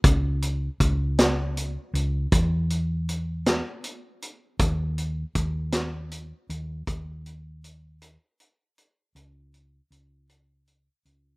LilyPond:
<<
  \new Staff \with { instrumentName = "Fingered electric bass" } { \clef bass \time 6/8 \key cis \mixolydian \tempo 4. = 53 cis,4 cis,4. cis,8 | e,2 r4 | dis,4 dis,4. dis,8 | dis,2 r4 |
cis,4 cis,4. cis,8 | }
  \new DrumStaff \with { instrumentName = "Drums" } \drummode { \time 6/8 <hh bd>8 hh8 <hh bd>8 <hh sn>8 hh8 hh8 | <hh bd>8 hh8 hh8 <hh sn>8 hh8 hh8 | <hh bd>8 hh8 <hh bd>8 <hh sn>8 hh8 hh8 | <hh bd>8 hh8 hh8 hh8 hh8 hh8 |
hh8 hh8 hh8 hh8 hh8 hh8 | }
>>